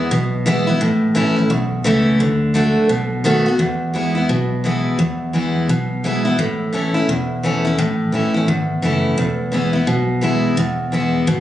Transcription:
Already playing: G#3 B3 E4
0.11 B1 B2
0.46 E3 G#3 B3 E4
0.67 B3 E4
0.81 A1 A2
1.15 A1 E3 A3 C#4 E4
1.36 C#4 E4
1.50 B1 E2
1.84 C#2 E3 A3 C#4 E4
2.20 D2 D3
2.54 D3 A3 D4 F#4
2.89 B1 B2
3.24 D#3 A3 B3 F#4
3.46 B3 F#4
3.59 E2
3.94 E3 G#3 B3 E4
4.15 B3 E4
4.29 B1 B2
4.64 E3 G#3 B3 E4
4.99 E2
5.33 E3 G#3 B3 E4
5.69 B1 B2
6.04 E3 G#3 B3 E4
6.25 B3 E4
6.39 A1 A2
6.73 E3 A3 C#4 E4
6.94 C#4 E4
7.08 E1 E2
7.43 E3 A3 C#4 E4
7.65 C#4 E4
7.78 A1 A2
8.12 A1 E3 A3 C#4 E4
8.34 C#4 E4
8.48 G#1 E2
8.82 F#1 E3 A3 C#4 E4
9.18 E1 E2
9.52 E3 G#3 B3 E4
9.73 B3 E4
9.87 B1 B2
10.21 E3 G#3 B3 E4
10.57 E1 E2
10.92 E3 G#3 B3 E4
11.27 G#1 B2

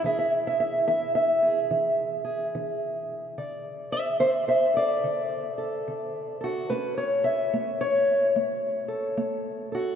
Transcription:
0.04 E3 E4 G#4 E5
0.19 E5
0.47 E5
0.60 E5
0.88 E3 E5
1.15 E5
1.42 G#4
1.71 E3
2.25 G#4
2.55 E3
3.38 D3 D5
3.92 C5 E5
4.20 D3 C5 E5
4.48 C5 E5
4.74 A4 D5
5.04 D3
5.58 A4
5.88 D3
6.41 F#4 A4
6.70 A3 C#4 B4
6.98 C#5
7.24 E5
7.53 A3
7.81 C#5
8.36 A3
8.88 A4
9.17 A3
9.72 F#4 A4

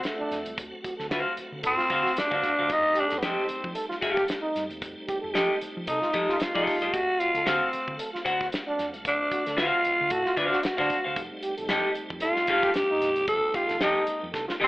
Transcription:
Already playing: F#3 A3 C4 F4
0.03 A3, snare, closed hi-hat
0.18 D4
0.31 F2, snare, closed hi-hat
0.46 C2, closed hi-hat
0.58 D2 F#4, kick, closed hi-hat
0.83 F#4, kick, closed hi-hat
0.97 D2 A4, snare
1.09 D3 F#4 C5 F5, snare, closed hi-hat
1.37 muted fingered electric bass stroke, closed hi-hat
1.52 D3
1.62 A2 C4 A4, kick, closed hi-hat
1.77 F4, snare
1.90 D3 F#4 C5 F5, kick, closed hi-hat
2.03 F#4, snare
2.17 D4, snare, closed hi-hat
2.30 D3 D4 F#4 C5 F5, kick, snare
2.44 kick, snare, closed hi-hat
2.59 D2 F#4 C5 F5
2.69 F2 G3 D#4, kick, closed hi-hat
2.95 G4, closed hi-hat
2.99 D4
3.10 F2 A4, snare, closed hi-hat
3.18 B3 G4
3.23 F3 C4 G4 A4 D#5, snare, closed hi-hat
3.49 muted fingered electric bass stroke, closed hi-hat
3.64 F3, kick
3.75 A4, closed hi-hat
3.89 F4, snare
4.01 F2 G4 A4 F5, kick, closed hi-hat
4.14 G4, kick, snare
4.28 snare, closed hi-hat
4.41 D#4
4.56 G2, snare, closed hi-hat
4.70 D#2, closed hi-hat
4.82 F2, kick, closed hi-hat
5.07 G4, kick, closed hi-hat
5.21 F2 A4
5.33 F3 G4 A4 D#5, snare, closed hi-hat
5.61 muted fingered electric bass stroke, closed hi-hat
5.77 F3
5.86 C3 D#4 A4, kick, closed hi-hat
6.02 F4, snare
6.13 F3 G4 A4 D#5, kick, closed hi-hat
6.29 F4, snare
6.40 F4, snare, closed hi-hat
6.54 F3 D#4 G4 A4 D#5, kick, snare
6.67 kick, snare, open hi-hat
6.82 C2 G4 A4 D#5, closed hi-hat
6.93 D2 F#3 C4 F#4 F5, kick, closed hi-hat
7.19 F4 F#4, closed hi-hat
7.33 D2 A4, closed hi-hat
7.45 D3 C4 F#4 C5 F5, snare, closed hi-hat
7.73 muted fingered electric bass stroke, closed hi-hat
7.88 D3, kick
7.98 A4, closed hi-hat
8.13 F4, snare
8.25 D2 F#4 C5 F#5, kick, closed hi-hat
8.40 F#4, kick, snare
8.52 snare, closed hi-hat
8.67 D4
8.79 F2, snare, closed hi-hat
8.93 C2, closed hi-hat
9.05 D2 D4, kick, closed hi-hat
9.31 F#4, kick, closed hi-hat
9.46 D2 A4, snare, closed hi-hat
9.57 D3 F4 F#4 C5 F5, snare, closed hi-hat
9.84 muted fingered electric bass stroke, closed hi-hat
10.01 D3
10.10 A2 F#4 A4, kick, closed hi-hat
10.26 F4, snare
10.36 D3 D4 F#4 C5 F5, kick, closed hi-hat
10.52 F#4, snare
10.63 F#4, snare, closed hi-hat
10.77 D3 D4 F#4 C5 F5, kick, snare
10.90 kick, snare, closed hi-hat
11.04 D2 F#4 C5 F5
11.16 F1 G3 A3 D#4, kick, closed hi-hat
11.42 G4, closed hi-hat
11.57 F1 A4, closed hi-hat
11.68 F2 G4 A4 D#5, snare, closed hi-hat
11.95 muted fingered electric bass stroke, closed hi-hat
12.10 F2, kick
12.20 F4 A4, closed hi-hat
12.36 F4, snare
12.47 G1 G4 A4 F5, kick, closed hi-hat
12.63 G4, kick, snare
12.74 G4, snare, closed hi-hat
12.90 D#4
13.02 A1, snare, closed hi-hat
13.16 G1, closed hi-hat
13.28 F1 B3 A4, kick, closed hi-hat
13.54 F4 G4, kick, closed hi-hat
13.68 F1 A4, snare, closed hi-hat
13.80 F2 D#4 G4 A4 D#5, snare, closed hi-hat
14.07 muted fingered electric bass stroke, closed hi-hat
14.23 F2
14.33 C2 A4, kick, snare
14.48 F4, snare
14.60 D#2 C4 G4 A4 D#5

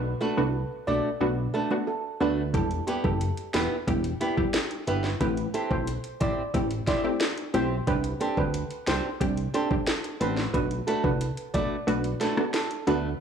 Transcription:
Already playing: B1 A3 B3 D4 F#4
0.20 A3 D4 F#4 A4 B4
0.37 C2 A3 B3 D4 F#4 B4
0.87 B1 A3 D4 F#4 B4 D5
1.21 B1 A3 B3 D4 F#4 B4
1.54 A3 D4 F#4 A4 B4
1.70 A3 B3 D4 F#4, muted nylon-string guitar stroke
1.87 A4
2.21 D2 A3 B3 D4 F#4 B4
2.54 E1 G3 B3 E4 G4 A4, kick, closed hi-hat
2.71 closed hi-hat
2.87 B3 E4 G4 B4, closed hi-hat
3.04 F#1 G3 B3 E4 G4 A4, kick
3.21 closed hi-hat
3.37 closed hi-hat
3.54 E1 B3 E4 G4 B4, snare, closed hi-hat
3.87 E1 G3 B3 E4 G4, kick, closed hi-hat
4.04 closed hi-hat
4.21 B3 E4 G4 B4, closed hi-hat
4.37 G3 B3 E4 G4, muted nylon-string guitar stroke, kick
4.54 snare, closed hi-hat
4.71 closed hi-hat
4.87 G1 B3 E4 G4 B4, closed hi-hat
5.04 snare
5.21 A1 A3 C4 E4 G4 B4, kick, closed hi-hat
5.37 closed hi-hat
5.54 C4 E4 G4 A4 C5, closed hi-hat
5.71 B1 A3 C4 E4 G4 C5, kick
5.87 closed hi-hat
6.04 closed hi-hat
6.20 A1 C4 E4 G4 C5 D5, kick, closed hi-hat
6.54 A1 A3 C4 E4 G4, kick, closed hi-hat
6.71 closed hi-hat
6.87 C4 E4 G4 C5 D5, kick, snare, closed hi-hat
7.04 A3 C4 E4 G4, muted nylon-string guitar stroke
7.21 snare, closed hi-hat
7.38 closed hi-hat
7.54 B1 A3 C4 E4 G4 C5, closed hi-hat
7.87 C2 G3 C4 D4 G4 B4, kick, closed hi-hat
8.04 closed hi-hat
8.20 C4 D4 G4 A4 C5, closed hi-hat
8.37 D2 G3 C4 D4 G4 B4, kick
8.54 closed hi-hat
8.71 closed hi-hat
8.87 C2 C4 D4 G4 C5, snare, closed hi-hat
9.20 C2 G3 C4 D4 G4, kick, closed hi-hat
9.37 closed hi-hat
9.54 C4 D4 G4 A4 C5, closed hi-hat
9.70 G3 C4 D4 G4, muted nylon-string guitar stroke, kick
9.87 snare, closed hi-hat
10.04 closed hi-hat
10.20 A1 C4 D4 G4 B4 C5, closed hi-hat
10.37 snare
10.54 B1 A3 B3 D4 F#4 B4, kick, closed hi-hat
10.71 closed hi-hat
10.87 A3 D4 F#4 A4 B4, closed hi-hat
11.04 C2 A3 B3 D4 F#4 B4, kick
11.21 closed hi-hat
11.37 closed hi-hat
11.54 B1 A3 D4 F#4 B4 D5, kick, closed hi-hat
11.87 B1 A3 B3 D4 F#4 B4, closed hi-hat
12.04 closed hi-hat
12.20 A3 D4 F#4 A4 B4, snare, closed hi-hat
12.37 A3 B3 D4 F#4, muted nylon-string guitar stroke, cross-stick
12.54 A4, snare, closed hi-hat
12.71 closed hi-hat
12.87 D2 A3 B3 D4 F#4 B4, closed hi-hat

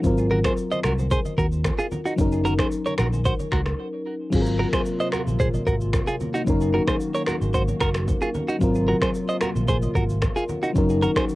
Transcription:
0.02 G#1 F#3 C4 F4, kick, shaker
0.07 A#4
0.18 shaker
0.31 F#4 A#4, high conga
0.44 G#4 C5, finger snap, kick, cross-stick, shaker
0.57 shaker
0.72 C5 D#5, high conga, shaker
0.84 C2 F#4 A#4, finger snap, cross-stick, low conga, shaker
0.99 high conga, shaker
1.11 G#4 C5, kick, shaker
1.25 high conga, shaker
1.38 D#2 F#4 A#4, kick, shaker
1.52 shaker
1.64 finger snap, kick, cross-stick, low conga, shaker
1.79 F4 G#4, shaker
1.92 high conga, low conga, shaker
2.06 D#4 F#4, shaker
2.16 F#1 F#3 C#4 D#4, kick, shaker
2.21 A#4
2.32 shaker
2.45 F#4 A#4, high conga, shaker
2.59 G#4 C5, finger snap, kick, cross-stick, shaker
2.72 shaker
2.86 A#4 C#5, high conga, shaker
2.98 A#1 F#4 A#4, finger snap, cross-stick, low conga, shaker
3.13 high conga, shaker
3.25 F#4 C5, kick, shaker
3.40 high conga, shaker
3.52 C#2 F#4 A#4, finger snap, kick, cross-stick
3.66 finger snap, cross-stick, shaker
4.30 G#1 C3 F#3 A#3 C4 F4, kick, crash, shaker
4.35 G#4
4.42 A#4
4.46 shaker
4.59 F#4 A#4, high conga
4.73 G#4 C5, finger snap, kick, cross-stick, shaker
4.86 shaker
5.00 C5 D#5, shaker
5.12 F#4 A#4, finger snap, cross-stick, low conga, shaker
5.27 A#1, high conga, shaker
5.40 G#4 C5, kick, shaker
5.54 high conga, shaker
5.67 G#1 F#4 A#4, kick, shaker
5.81 shaker
5.93 finger snap, kick, cross-stick, low conga, shaker
6.07 F4 G#4, shaker
6.20 high conga, low conga, shaker
6.34 D#4 F#4, shaker
6.45 F#1 D#3 F#3 C#4 D#4 F#4, kick, shaker
6.50 A#4
6.61 shaker
6.74 F#4 A#4, high conga
6.87 G#4 C5, finger snap, kick, cross-stick, shaker
7.00 shaker
7.14 A#4 C#5, shaker
7.26 F#4 A#4, finger snap, cross-stick, low conga, shaker
7.41 G#1, high conga, shaker
7.54 F#4 C5, kick, shaker
7.68 high conga, shaker
7.80 F#1 F#4 A#4, finger snap, kick, cross-stick, shaker
7.94 finger snap, cross-stick, shaker
8.08 kick, low conga, shaker
8.22 F4 G#4, shaker
8.34 high conga, low conga, shaker
8.48 D#4 F#4, shaker
8.59 G#1 C3 F#3 C4 F4, kick, shaker
8.64 A#4
8.75 shaker
8.88 F#4 A#4, high conga
9.02 G#4 C5, finger snap, kick, cross-stick, shaker
9.14 shaker
9.29 C5 D#5, shaker
9.41 F#4 A#4, finger snap, cross-stick, low conga, shaker
9.56 A#1, high conga, shaker
9.68 G#4 C5, kick, shaker
9.82 high conga, shaker
9.95 G#1 F#4 A#4, kick, shaker
10.09 shaker
10.22 finger snap, kick, cross-stick, low conga, shaker
10.36 F4 G#4, shaker
10.49 high conga, low conga, shaker
10.63 D#4 F#4, shaker
10.73 F#1 D#3 F#3 C#4 D#4 F#4, kick, shaker
10.78 A#4
10.89 shaker
11.02 F#4 A#4, high conga, shaker
11.16 G#4 C5, finger snap, kick, cross-stick, shaker
11.29 shaker

